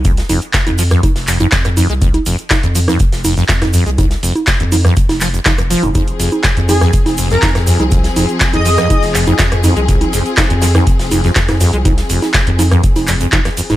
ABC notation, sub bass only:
X:1
M:4/4
L:1/16
Q:1/4=122
K:Fm
V:1 name="Sub bass" clef=bass
C,, z F,,, z2 F,,2 z2 F,,,2 z F,,2 z C,,- | C,, z F,,, z2 F,,2 z2 F,,,2 z F,,2 z C,,- | C,, z F,,, z2 F,,2 z2 F,,,2 z F,,,2 z F,,,- | F,,, z F,,, z2 F,,2 z2 F,,,2 z F,,2 z C,,- |
C,, z F,,, z2 F,,2 z2 F,,,2 z F,,2 z C,,- | C,, z F,,, z2 F,,2 z2 F,,,2 z F,,2 z C,,- | C,, z F,,, z2 F,,2 z2 F,,,2 z F,,, z2 E,,, |]